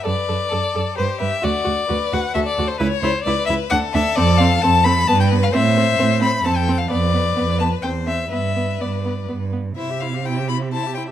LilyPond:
<<
  \new Staff \with { instrumentName = "Violin" } { \time 3/4 \key d \mixolydian \tempo 4 = 130 d''2 c''8 e''8 | d''4. fis''8 e''16 d''8 c''16 | b'8 c''8 d''8 e''8 fis''8 e''8 | \key c \major d''8 f''8 a''8 b''8 a''16 g''8 f''16 |
e''4. b''8 a''16 g''8 f''16 | d''4. a''8 g''8 e''8 | e''4 d''4 r4 | c''16 e''16 c''16 e''16 c''16 e''16 c''16 e''16 c''16 e''16 c''16 e''16 | }
  \new Staff \with { instrumentName = "Violin" } { \time 3/4 \key d \mixolydian b'4 a'4 g'4 | fis'4 b'4 a'4 | cis''4 b'4 a'4~ | \key c \major a'2 b'4 |
c''2 a'4 | b'2 c''4 | b'2~ b'8 r8 | e''8 f''8 g''8 b''8 a''8 g''8 | }
  \new Staff \with { instrumentName = "Viola" } { \time 3/4 \key d \mixolydian a'8 a'8 a'8 a'8 b'8 b'8 | fis'8 fis'8 fis'8 fis'8 fis'8 fis'8 | e'8 e'8 e'8 e'8 d'8 d'8 | \key c \major c'8 c'8 c'8 c'8 b8 b8 |
c'8 c'8 c'8 c'8 c'8 c'8 | b8 b8 b8 b8 c'8 c'8 | b8 b8 b8 b8 b8 b8 | e'16 g'16 e'16 g'16 e'16 g'16 e'16 g'16 e'16 g'16 e'16 g'16 | }
  \new Staff \with { instrumentName = "Cello" } { \clef bass \time 3/4 \key d \mixolydian fis,8 fis,8 fis,8 fis,8 g,8 g,8 | d,8 d,8 d,8 d,8 d,8 d,8 | cis,8 cis,8 cis,8 cis,8 d,8 d,8 | \key c \major f,4 f,4 g,4 |
a,4 a,4 f,4 | f,4 f,4 e,4 | g,4 g,4 g,4 | c2. | }
>>